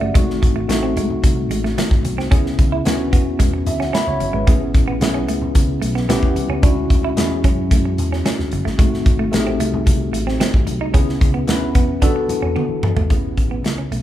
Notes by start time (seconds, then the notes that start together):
Already playing: G#3 C#4 E4 G4 G#4 D5 E5 F#5
0.01 G1 A3 D5
0.14 G#1 G#3 A3 C4 D#4 F#4, kick, closed hi-hat, muted conga
0.30 snare
0.42 G#1, muted clean electric guitar stroke, kick, closed hi-hat, muted conga
0.56 A3
0.68 A1 A3 C4 D#4 F#4, muted clean electric guitar stroke, snare, closed hi-hat, high conga
0.83 C4
0.96 C2 G#3, closed hi-hat
1.10 low conga
1.23 C2, muted clean electric guitar stroke, kick, closed hi-hat, muted conga
1.50 A1 G#3, closed hi-hat
1.64 A3, snare
1.77 A3, snare, closed hi-hat, high conga
1.91 G#1, kick, snare
2.04 B1, muted clean electric guitar stroke, closed hi-hat, high conga
2.18 C2 C4, snare
2.31 C#2 B3 C#4 E4 G#4, kick, closed hi-hat, muted conga
2.46 snare
2.59 C#2, muted clean electric guitar stroke, kick, closed hi-hat, muted conga
2.72 E4
2.85 D2 B3 C#4 E4 F#4, snare, closed hi-hat, high conga
3.13 E2 B3, kick, closed hi-hat
3.39 E2 G#3, kick, closed hi-hat, muted conga
3.54 muted clean electric guitar stroke
3.66 D2 E5, closed hi-hat, low conga
3.80 C#4 F#5, snare
3.93 C#4 E5 B5, snare, closed hi-hat, high conga
4.07 C#2 C#5
4.20 G1, muted clean electric guitar stroke, closed hi-hat, high conga
4.33 G#1 G#3 B4
4.47 A1 A3 B3 C#4 E4 G#4, kick, closed hi-hat, muted conga
4.74 A1, muted clean electric guitar stroke, kick, closed hi-hat, muted conga
4.88 B3
5.01 B1 B3 C#4 E4 G#4, muted clean electric guitar stroke, snare, closed hi-hat, high conga
5.14 C#4
5.28 C#2 A3, closed hi-hat
5.41 low conga
5.55 C#2, muted clean electric guitar stroke, kick, closed hi-hat, muted conga
5.82 B1 A3, closed hi-hat
5.95 B3, snare
6.09 A1 B3 C#4 E4 G4, snare, closed hi-hat, high conga
6.23 E2, kick
6.35 C2, muted clean electric guitar stroke, closed hi-hat, high conga
6.49 C#2 C#4
6.62 D2 G#3 C#4 D4 E4 F#4, kick, closed hi-hat, muted conga
6.90 D2, muted clean electric guitar stroke, kick, closed hi-hat
7.04 E4
7.16 E2 G#3 C#4 E4 G#4, snare, closed hi-hat, high conga
7.44 F#2 C#4, kick, closed hi-hat
7.71 F#2 A3, kick, closed hi-hat, muted conga
7.85 muted clean electric guitar stroke
7.98 E2, closed hi-hat, low conga
8.12 C#4, snare
8.25 C#4, snare, closed hi-hat, high conga
8.39 D2, snare
8.52 F#1, muted clean electric guitar stroke, closed hi-hat, high conga
8.65 G1 A3, snare
8.78 G#1 G#3 A3 C4 D#4 F#4, kick, closed hi-hat, muted conga
8.94 snare
9.06 G#1, muted clean electric guitar stroke, kick, closed hi-hat, muted conga
9.19 A3
9.32 A1 A3 C4 D#4 G4, muted clean electric guitar stroke, snare, closed hi-hat, high conga
9.39 G#4
9.47 C4
9.60 C2 A3, closed hi-hat
9.74 low conga
9.86 C2, muted clean electric guitar stroke, kick, closed hi-hat, muted conga
10.13 A1 A3, closed hi-hat
10.27 C4, snare
10.40 C4, snare, closed hi-hat, high conga
10.54 G#1, kick
10.67 B1, muted clean electric guitar stroke, closed hi-hat, high conga
10.80 C2 D#4
10.93 C#2 B3 C#4 E4 G#4, kick, closed hi-hat, muted conga
11.09 snare
11.21 C#2, muted clean electric guitar stroke, kick, closed hi-hat, muted conga
11.34 B3
11.47 D2 B3 C#4 E4 B4, snare, closed hi-hat, high conga
11.75 E2 B3, kick, closed hi-hat
12.01 E2 B3 D4 F#4 A4, kick, closed hi-hat, muted conga
12.16 muted clean electric guitar stroke
12.29 E3, closed hi-hat, low conga
12.42 E2 C#4
12.56 B3, high tom, high conga
12.69 E3
12.83 muted clean electric guitar stroke, mid tom, high conga
12.96 G#1 A3, floor tom
13.10 A1 A3 B3 C#4 E4 G#4, kick, closed hi-hat, muted conga
13.37 A1, muted clean electric guitar stroke, kick, closed hi-hat, muted conga
13.51 B3
13.64 C#2, muted clean electric guitar stroke, snare, closed hi-hat, high conga
13.78 C#4
13.91 B1 A3, closed hi-hat